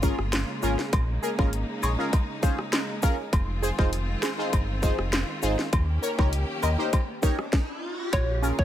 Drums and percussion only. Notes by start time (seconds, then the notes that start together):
0.03 kick, cabasa
0.19 cross-stick
0.32 snare, clap, closed hi-hat, high woodblock
0.63 cabasa
0.79 snare
0.93 kick, closed hi-hat, high woodblock
1.23 cabasa
1.39 kick, high woodblock
1.53 closed hi-hat
1.83 cabasa, high woodblock
2.13 kick, closed hi-hat, high woodblock
2.43 kick, cabasa
2.59 cross-stick
2.72 snare, clap, closed hi-hat, high woodblock
3.03 kick, cabasa
3.33 kick, closed hi-hat, high woodblock
3.63 cabasa
3.79 kick, high woodblock
3.93 closed hi-hat
4.23 snare, clap, cabasa, high woodblock
4.53 kick, closed hi-hat, high woodblock
4.83 kick, cabasa
4.99 cross-stick
5.12 snare, clap, closed hi-hat, high woodblock
5.43 cabasa
5.59 snare
5.73 kick, closed hi-hat, high woodblock
6.03 cabasa
6.19 kick, high woodblock
6.33 closed hi-hat
6.63 cabasa, high woodblock
6.93 kick, closed hi-hat, high woodblock
7.23 kick, cabasa
7.39 cross-stick
7.53 kick, snare
8.13 kick, closed hi-hat, high woodblock
8.43 cabasa
8.59 kick